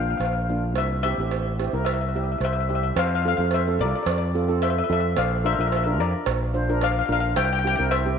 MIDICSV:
0, 0, Header, 1, 5, 480
1, 0, Start_track
1, 0, Key_signature, -1, "major"
1, 0, Tempo, 550964
1, 659, Time_signature, 4, 2, 24, 8
1, 7133, End_track
2, 0, Start_track
2, 0, Title_t, "Steel pan"
2, 0, Program_c, 0, 114
2, 24, Note_on_c, 0, 77, 48
2, 79, Note_off_c, 0, 77, 0
2, 89, Note_on_c, 0, 77, 57
2, 139, Note_off_c, 0, 77, 0
2, 153, Note_on_c, 0, 77, 49
2, 205, Note_off_c, 0, 77, 0
2, 215, Note_on_c, 0, 77, 59
2, 274, Note_off_c, 0, 77, 0
2, 288, Note_on_c, 0, 77, 51
2, 341, Note_off_c, 0, 77, 0
2, 679, Note_on_c, 0, 76, 79
2, 888, Note_off_c, 0, 76, 0
2, 899, Note_on_c, 0, 76, 94
2, 1600, Note_off_c, 0, 76, 0
2, 1610, Note_on_c, 0, 76, 75
2, 1677, Note_off_c, 0, 76, 0
2, 1687, Note_on_c, 0, 76, 51
2, 1741, Note_off_c, 0, 76, 0
2, 1752, Note_on_c, 0, 76, 53
2, 1807, Note_off_c, 0, 76, 0
2, 1817, Note_on_c, 0, 76, 46
2, 1875, Note_off_c, 0, 76, 0
2, 1885, Note_on_c, 0, 76, 50
2, 1939, Note_off_c, 0, 76, 0
2, 1949, Note_on_c, 0, 76, 44
2, 2009, Note_off_c, 0, 76, 0
2, 2019, Note_on_c, 0, 76, 50
2, 2068, Note_off_c, 0, 76, 0
2, 2078, Note_on_c, 0, 76, 44
2, 2121, Note_off_c, 0, 76, 0
2, 2123, Note_on_c, 0, 72, 60
2, 2132, Note_on_c, 0, 76, 81
2, 2146, Note_off_c, 0, 76, 0
2, 2146, Note_on_c, 0, 76, 56
2, 2179, Note_off_c, 0, 72, 0
2, 2193, Note_off_c, 0, 76, 0
2, 2203, Note_on_c, 0, 76, 60
2, 2221, Note_off_c, 0, 76, 0
2, 2227, Note_on_c, 0, 76, 51
2, 2259, Note_off_c, 0, 76, 0
2, 2269, Note_on_c, 0, 76, 62
2, 2318, Note_off_c, 0, 76, 0
2, 2344, Note_on_c, 0, 76, 53
2, 2386, Note_off_c, 0, 76, 0
2, 2397, Note_on_c, 0, 76, 70
2, 2453, Note_off_c, 0, 76, 0
2, 2468, Note_on_c, 0, 76, 63
2, 2519, Note_off_c, 0, 76, 0
2, 2603, Note_on_c, 0, 77, 96
2, 2605, Note_on_c, 0, 72, 73
2, 2660, Note_off_c, 0, 72, 0
2, 2662, Note_off_c, 0, 77, 0
2, 2672, Note_on_c, 0, 77, 67
2, 2733, Note_off_c, 0, 77, 0
2, 2744, Note_on_c, 0, 77, 80
2, 2796, Note_off_c, 0, 77, 0
2, 2807, Note_on_c, 0, 77, 69
2, 2848, Note_off_c, 0, 77, 0
2, 2858, Note_on_c, 0, 77, 90
2, 2924, Note_off_c, 0, 77, 0
2, 2936, Note_on_c, 0, 77, 75
2, 2994, Note_off_c, 0, 77, 0
2, 3086, Note_on_c, 0, 76, 84
2, 3087, Note_on_c, 0, 72, 65
2, 3300, Note_off_c, 0, 72, 0
2, 3318, Note_on_c, 0, 74, 83
2, 3322, Note_off_c, 0, 76, 0
2, 3324, Note_on_c, 0, 70, 64
2, 3373, Note_off_c, 0, 74, 0
2, 3379, Note_off_c, 0, 70, 0
2, 3383, Note_on_c, 0, 74, 58
2, 3435, Note_off_c, 0, 74, 0
2, 3446, Note_on_c, 0, 74, 70
2, 3501, Note_off_c, 0, 74, 0
2, 3511, Note_on_c, 0, 74, 58
2, 3565, Note_off_c, 0, 74, 0
2, 3575, Note_on_c, 0, 74, 61
2, 3632, Note_off_c, 0, 74, 0
2, 3642, Note_on_c, 0, 74, 62
2, 3701, Note_off_c, 0, 74, 0
2, 4030, Note_on_c, 0, 76, 82
2, 4033, Note_on_c, 0, 72, 63
2, 4086, Note_off_c, 0, 76, 0
2, 4094, Note_off_c, 0, 72, 0
2, 4096, Note_on_c, 0, 76, 62
2, 4158, Note_off_c, 0, 76, 0
2, 4169, Note_on_c, 0, 76, 71
2, 4206, Note_off_c, 0, 76, 0
2, 4216, Note_on_c, 0, 76, 61
2, 4282, Note_off_c, 0, 76, 0
2, 4292, Note_on_c, 0, 76, 75
2, 4348, Note_off_c, 0, 76, 0
2, 4359, Note_on_c, 0, 76, 66
2, 4425, Note_off_c, 0, 76, 0
2, 4513, Note_on_c, 0, 77, 83
2, 4514, Note_on_c, 0, 74, 67
2, 4732, Note_off_c, 0, 74, 0
2, 4754, Note_on_c, 0, 72, 70
2, 4755, Note_off_c, 0, 77, 0
2, 4756, Note_on_c, 0, 76, 98
2, 4806, Note_off_c, 0, 76, 0
2, 4814, Note_off_c, 0, 72, 0
2, 4816, Note_on_c, 0, 76, 66
2, 4875, Note_off_c, 0, 76, 0
2, 4885, Note_on_c, 0, 76, 78
2, 4933, Note_off_c, 0, 76, 0
2, 4943, Note_on_c, 0, 76, 62
2, 5002, Note_off_c, 0, 76, 0
2, 5020, Note_on_c, 0, 76, 69
2, 5075, Note_off_c, 0, 76, 0
2, 5086, Note_on_c, 0, 76, 62
2, 5142, Note_off_c, 0, 76, 0
2, 5227, Note_on_c, 0, 70, 72
2, 5234, Note_on_c, 0, 74, 81
2, 5909, Note_off_c, 0, 70, 0
2, 5938, Note_off_c, 0, 74, 0
2, 5949, Note_on_c, 0, 74, 75
2, 5958, Note_on_c, 0, 77, 102
2, 6010, Note_off_c, 0, 74, 0
2, 6018, Note_off_c, 0, 77, 0
2, 6028, Note_on_c, 0, 77, 71
2, 6078, Note_off_c, 0, 77, 0
2, 6089, Note_on_c, 0, 77, 81
2, 6139, Note_off_c, 0, 77, 0
2, 6149, Note_on_c, 0, 77, 65
2, 6196, Note_off_c, 0, 77, 0
2, 6206, Note_on_c, 0, 77, 93
2, 6265, Note_off_c, 0, 77, 0
2, 6276, Note_on_c, 0, 77, 76
2, 6342, Note_off_c, 0, 77, 0
2, 6416, Note_on_c, 0, 76, 71
2, 6419, Note_on_c, 0, 79, 96
2, 6478, Note_off_c, 0, 79, 0
2, 6483, Note_off_c, 0, 76, 0
2, 6488, Note_on_c, 0, 79, 70
2, 6548, Note_off_c, 0, 79, 0
2, 6558, Note_on_c, 0, 79, 86
2, 6602, Note_off_c, 0, 79, 0
2, 6613, Note_on_c, 0, 79, 69
2, 6673, Note_off_c, 0, 79, 0
2, 6684, Note_on_c, 0, 79, 91
2, 6748, Note_off_c, 0, 79, 0
2, 6758, Note_on_c, 0, 79, 79
2, 6822, Note_off_c, 0, 79, 0
2, 6891, Note_on_c, 0, 72, 72
2, 6892, Note_on_c, 0, 76, 94
2, 7118, Note_off_c, 0, 72, 0
2, 7118, Note_off_c, 0, 76, 0
2, 7133, End_track
3, 0, Start_track
3, 0, Title_t, "Steel pan"
3, 0, Program_c, 1, 114
3, 0, Note_on_c, 1, 58, 59
3, 0, Note_on_c, 1, 62, 51
3, 0, Note_on_c, 1, 65, 64
3, 235, Note_off_c, 1, 58, 0
3, 237, Note_off_c, 1, 65, 0
3, 238, Note_off_c, 1, 62, 0
3, 430, Note_on_c, 1, 65, 68
3, 431, Note_on_c, 1, 58, 59
3, 431, Note_on_c, 1, 62, 61
3, 665, Note_off_c, 1, 65, 0
3, 666, Note_off_c, 1, 58, 0
3, 666, Note_off_c, 1, 62, 0
3, 914, Note_on_c, 1, 60, 59
3, 919, Note_on_c, 1, 64, 53
3, 920, Note_on_c, 1, 67, 71
3, 984, Note_off_c, 1, 60, 0
3, 987, Note_off_c, 1, 64, 0
3, 987, Note_off_c, 1, 67, 0
3, 1042, Note_on_c, 1, 60, 56
3, 1044, Note_on_c, 1, 67, 63
3, 1046, Note_on_c, 1, 64, 52
3, 1250, Note_off_c, 1, 60, 0
3, 1252, Note_off_c, 1, 64, 0
3, 1252, Note_off_c, 1, 67, 0
3, 1389, Note_on_c, 1, 67, 66
3, 1390, Note_on_c, 1, 60, 52
3, 1393, Note_on_c, 1, 64, 53
3, 1463, Note_off_c, 1, 60, 0
3, 1463, Note_off_c, 1, 67, 0
3, 1465, Note_off_c, 1, 64, 0
3, 1511, Note_on_c, 1, 64, 57
3, 1512, Note_on_c, 1, 60, 64
3, 1514, Note_on_c, 1, 70, 69
3, 1725, Note_off_c, 1, 64, 0
3, 1726, Note_off_c, 1, 60, 0
3, 1727, Note_off_c, 1, 70, 0
3, 1875, Note_on_c, 1, 60, 63
3, 1877, Note_on_c, 1, 67, 64
3, 1880, Note_on_c, 1, 64, 55
3, 2161, Note_off_c, 1, 60, 0
3, 2162, Note_off_c, 1, 67, 0
3, 2163, Note_off_c, 1, 64, 0
3, 2350, Note_on_c, 1, 60, 64
3, 2350, Note_on_c, 1, 67, 69
3, 2353, Note_on_c, 1, 64, 55
3, 2587, Note_off_c, 1, 60, 0
3, 2587, Note_off_c, 1, 67, 0
3, 2589, Note_off_c, 1, 64, 0
3, 2833, Note_on_c, 1, 65, 58
3, 2834, Note_on_c, 1, 69, 71
3, 2836, Note_on_c, 1, 60, 75
3, 2905, Note_off_c, 1, 65, 0
3, 2906, Note_off_c, 1, 69, 0
3, 2907, Note_off_c, 1, 60, 0
3, 2957, Note_on_c, 1, 69, 71
3, 2958, Note_on_c, 1, 60, 61
3, 2961, Note_on_c, 1, 65, 62
3, 3093, Note_off_c, 1, 60, 0
3, 3093, Note_off_c, 1, 69, 0
3, 3094, Note_off_c, 1, 65, 0
3, 3202, Note_on_c, 1, 69, 76
3, 3203, Note_on_c, 1, 60, 61
3, 3206, Note_on_c, 1, 65, 61
3, 3549, Note_off_c, 1, 69, 0
3, 3550, Note_off_c, 1, 60, 0
3, 3551, Note_off_c, 1, 65, 0
3, 3788, Note_on_c, 1, 65, 64
3, 3790, Note_on_c, 1, 69, 74
3, 3791, Note_on_c, 1, 60, 69
3, 3863, Note_off_c, 1, 65, 0
3, 3864, Note_off_c, 1, 60, 0
3, 3864, Note_off_c, 1, 69, 0
3, 3908, Note_on_c, 1, 60, 66
3, 3909, Note_on_c, 1, 69, 84
3, 3911, Note_on_c, 1, 65, 67
3, 4124, Note_off_c, 1, 60, 0
3, 4125, Note_off_c, 1, 65, 0
3, 4125, Note_off_c, 1, 69, 0
3, 4268, Note_on_c, 1, 65, 68
3, 4269, Note_on_c, 1, 60, 76
3, 4269, Note_on_c, 1, 69, 78
3, 4505, Note_off_c, 1, 65, 0
3, 4506, Note_off_c, 1, 60, 0
3, 4506, Note_off_c, 1, 69, 0
3, 4741, Note_on_c, 1, 70, 78
3, 4742, Note_on_c, 1, 65, 67
3, 4745, Note_on_c, 1, 62, 73
3, 4819, Note_off_c, 1, 65, 0
3, 4819, Note_off_c, 1, 70, 0
3, 4820, Note_off_c, 1, 62, 0
3, 4869, Note_on_c, 1, 62, 65
3, 4873, Note_on_c, 1, 70, 71
3, 4874, Note_on_c, 1, 65, 60
3, 5007, Note_off_c, 1, 62, 0
3, 5009, Note_off_c, 1, 70, 0
3, 5010, Note_off_c, 1, 65, 0
3, 5105, Note_on_c, 1, 70, 81
3, 5107, Note_on_c, 1, 62, 70
3, 5108, Note_on_c, 1, 65, 64
3, 5459, Note_off_c, 1, 70, 0
3, 5460, Note_off_c, 1, 62, 0
3, 5460, Note_off_c, 1, 65, 0
3, 5699, Note_on_c, 1, 62, 65
3, 5699, Note_on_c, 1, 65, 64
3, 5700, Note_on_c, 1, 72, 80
3, 5777, Note_off_c, 1, 62, 0
3, 5777, Note_off_c, 1, 65, 0
3, 5777, Note_off_c, 1, 72, 0
3, 5832, Note_on_c, 1, 65, 66
3, 5833, Note_on_c, 1, 62, 79
3, 5834, Note_on_c, 1, 70, 81
3, 6044, Note_off_c, 1, 65, 0
3, 6045, Note_off_c, 1, 62, 0
3, 6045, Note_off_c, 1, 70, 0
3, 6171, Note_on_c, 1, 65, 66
3, 6174, Note_on_c, 1, 62, 77
3, 6175, Note_on_c, 1, 70, 78
3, 6415, Note_off_c, 1, 65, 0
3, 6417, Note_off_c, 1, 62, 0
3, 6417, Note_off_c, 1, 70, 0
3, 6659, Note_on_c, 1, 60, 76
3, 6661, Note_on_c, 1, 67, 82
3, 6662, Note_on_c, 1, 64, 71
3, 6736, Note_off_c, 1, 60, 0
3, 6737, Note_off_c, 1, 64, 0
3, 6737, Note_off_c, 1, 67, 0
3, 6784, Note_on_c, 1, 64, 62
3, 6785, Note_on_c, 1, 70, 76
3, 6786, Note_on_c, 1, 60, 66
3, 6923, Note_off_c, 1, 64, 0
3, 6923, Note_off_c, 1, 70, 0
3, 6924, Note_off_c, 1, 60, 0
3, 7020, Note_on_c, 1, 64, 67
3, 7023, Note_on_c, 1, 60, 72
3, 7023, Note_on_c, 1, 67, 70
3, 7133, Note_off_c, 1, 60, 0
3, 7133, Note_off_c, 1, 64, 0
3, 7133, Note_off_c, 1, 67, 0
3, 7133, End_track
4, 0, Start_track
4, 0, Title_t, "Fingered electric bass"
4, 0, Program_c, 2, 33
4, 0, Note_on_c, 2, 34, 84
4, 114, Note_off_c, 2, 34, 0
4, 171, Note_on_c, 2, 34, 91
4, 652, Note_off_c, 2, 34, 0
4, 652, Note_on_c, 2, 36, 93
4, 987, Note_off_c, 2, 36, 0
4, 1027, Note_on_c, 2, 33, 74
4, 1460, Note_off_c, 2, 33, 0
4, 1507, Note_on_c, 2, 36, 76
4, 2042, Note_off_c, 2, 36, 0
4, 2094, Note_on_c, 2, 36, 87
4, 2530, Note_off_c, 2, 36, 0
4, 2580, Note_on_c, 2, 41, 102
4, 2912, Note_off_c, 2, 41, 0
4, 2945, Note_on_c, 2, 41, 91
4, 3302, Note_on_c, 2, 36, 98
4, 3315, Note_off_c, 2, 41, 0
4, 3418, Note_off_c, 2, 36, 0
4, 3538, Note_on_c, 2, 41, 93
4, 4187, Note_off_c, 2, 41, 0
4, 4266, Note_on_c, 2, 41, 86
4, 4480, Note_off_c, 2, 41, 0
4, 4502, Note_on_c, 2, 34, 113
4, 4832, Note_off_c, 2, 34, 0
4, 4865, Note_on_c, 2, 34, 93
4, 5226, Note_off_c, 2, 34, 0
4, 5226, Note_on_c, 2, 41, 94
4, 5339, Note_off_c, 2, 41, 0
4, 5457, Note_on_c, 2, 34, 89
4, 6105, Note_off_c, 2, 34, 0
4, 6174, Note_on_c, 2, 34, 86
4, 6392, Note_off_c, 2, 34, 0
4, 6419, Note_on_c, 2, 36, 111
4, 6749, Note_off_c, 2, 36, 0
4, 6788, Note_on_c, 2, 36, 98
4, 7133, Note_off_c, 2, 36, 0
4, 7133, End_track
5, 0, Start_track
5, 0, Title_t, "Drums"
5, 179, Note_on_c, 9, 56, 62
5, 266, Note_off_c, 9, 56, 0
5, 657, Note_on_c, 9, 56, 70
5, 745, Note_off_c, 9, 56, 0
5, 900, Note_on_c, 9, 56, 59
5, 987, Note_off_c, 9, 56, 0
5, 1144, Note_on_c, 9, 56, 64
5, 1232, Note_off_c, 9, 56, 0
5, 1390, Note_on_c, 9, 56, 60
5, 1477, Note_off_c, 9, 56, 0
5, 1622, Note_on_c, 9, 56, 83
5, 1709, Note_off_c, 9, 56, 0
5, 2101, Note_on_c, 9, 56, 63
5, 2188, Note_off_c, 9, 56, 0
5, 2583, Note_on_c, 9, 56, 95
5, 2670, Note_off_c, 9, 56, 0
5, 3057, Note_on_c, 9, 56, 71
5, 3144, Note_off_c, 9, 56, 0
5, 3542, Note_on_c, 9, 56, 94
5, 3629, Note_off_c, 9, 56, 0
5, 4024, Note_on_c, 9, 56, 68
5, 4111, Note_off_c, 9, 56, 0
5, 4500, Note_on_c, 9, 56, 81
5, 4587, Note_off_c, 9, 56, 0
5, 4985, Note_on_c, 9, 56, 68
5, 5072, Note_off_c, 9, 56, 0
5, 5456, Note_on_c, 9, 56, 90
5, 5543, Note_off_c, 9, 56, 0
5, 5936, Note_on_c, 9, 56, 69
5, 6023, Note_off_c, 9, 56, 0
5, 6414, Note_on_c, 9, 56, 87
5, 6501, Note_off_c, 9, 56, 0
5, 6896, Note_on_c, 9, 56, 76
5, 6983, Note_off_c, 9, 56, 0
5, 7133, End_track
0, 0, End_of_file